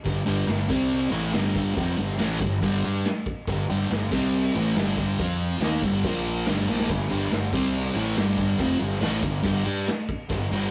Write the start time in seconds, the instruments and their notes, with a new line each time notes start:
0.05 fingered electric bass G1, distorted electric guitar G2 D3, kick, crash
0.26 fingered electric bass G1, distorted electric guitar G2 D3 G3
0.47 fingered electric bass G1, distorted electric guitar G2 D3, snare, crash
0.69 fingered electric bass C2, distorted electric guitar C3 G3 C4, kick
0.91 crash
1.11 fingered electric bass A1, distorted electric guitar A2 E3 A3
1.33 fingered electric bass G1, distorted electric guitar G2 D3 G3, snare, crash
1.55 kick
1.74 fingered electric bass F1, distorted electric guitar F2 C3 F3, kick, crash
1.97 fingered electric bass G1, distorted electric guitar G2 D3
2.10 snare
2.18 fingered electric bass A1, distorted electric guitar A2 E3 A3, snare, crash
2.39 fingered electric bass G1, distorted electric guitar G2 D3, kick
2.62 fingered electric bass G1, distorted electric guitar G2 D3 G3, kick, crash
2.83 fingered electric bass G2, distorted electric guitar G3 D4 G4
3.05 snare, crash
3.26 kick
3.47 fingered electric bass G1, distorted electric guitar G2 D3, kick, crash
3.69 fingered electric bass G1, distorted electric guitar G2 D3 G3
3.81 snare
3.90 fingered electric bass G1, distorted electric guitar G2 D3, snare, crash
4.12 fingered electric bass C2, distorted electric guitar C3 G3 C4, kick, crash
4.34 crash
4.55 fingered electric bass A1, distorted electric guitar A2 E3 A3
4.75 fingered electric bass G1, distorted electric guitar G2 D3 G3, snare, crash
4.97 kick
5.19 fingered electric bass F2, distorted electric guitar F3 C4 F4, kick, crash
5.60 fingered electric bass D#2, distorted electric guitar D#3 A#3 D#4, snare, crash
5.82 fingered electric bass G1, distorted electric guitar G2 D3 G3, kick
6.04 fingered electric bass A#1, distorted electric guitar A#2 F3 A#3, kick, crash
6.46 fingered electric bass G1, distorted electric guitar G2 D3 G3, snare, crash
6.68 fingered electric bass A#1, distorted electric guitar A#2 F3 A#3, snare
6.79 snare
6.89 fingered electric bass G1, distorted electric guitar G2 D3, kick, crash
7.10 fingered electric bass G1, distorted electric guitar G2 D3 G3
7.31 fingered electric bass G1, distorted electric guitar G2 D3, snare, crash
7.53 fingered electric bass C2, distorted electric guitar C3 G3 C4, kick
7.74 crash
7.94 fingered electric bass A1, distorted electric guitar A2 E3 A3
8.16 fingered electric bass G1, distorted electric guitar G2 D3 G3, snare, crash
8.38 kick
8.59 fingered electric bass F1, distorted electric guitar F2 C3 F3, kick, crash
8.80 fingered electric bass G1, distorted electric guitar G2 D3
8.92 snare
9.01 fingered electric bass A1, distorted electric guitar A2 E3 A3, snare, crash
9.22 fingered electric bass G1, distorted electric guitar G2 D3, kick
9.43 fingered electric bass G1, distorted electric guitar G2 D3 G3, kick, crash
9.65 fingered electric bass G2, distorted electric guitar G3 D4 G4
9.87 snare, crash
10.09 kick
10.29 fingered electric bass G1, distorted electric guitar G2 D3, kick, crash
10.50 fingered electric bass G1, distorted electric guitar G2 D3 G3